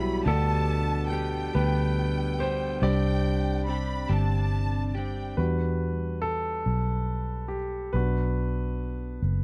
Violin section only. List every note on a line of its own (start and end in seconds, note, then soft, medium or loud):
0.00 0.21 B5 loud
0.24 1.06 A5 loud
1.10 2.79 G5 medium
2.80 3.62 G5 loud
3.66 4.06 B5 medium
4.09 4.87 A5 medium
4.89 4.95 A5 soft
4.96 5.38 G5 medium